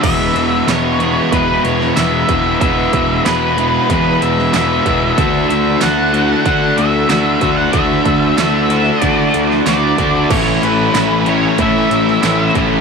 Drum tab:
CC |x---------------|----------------|----------------|----------------|
HH |x-x-x-x-x-x-x-x-|x-x-x-x-x-x-x-x-|x-x-x-x-x-x-x-x-|x-x-x-x-x-x-x-x-|
TB |----x-------x---|----x-------x---|----x-------x---|----x-------x---|
SD |----o------oo---|----o------oo---|----o-------o---|----o------oo---|
BD |o-------o-----o-|o-o-----o-----o-|o-------o-----o-|o-o-----o-----o-|

CC |x---------------|
HH |--x-x-x-x-x-x-x-|
TB |----x-------x---|
SD |----o------oo---|
BD |o-------o-----o-|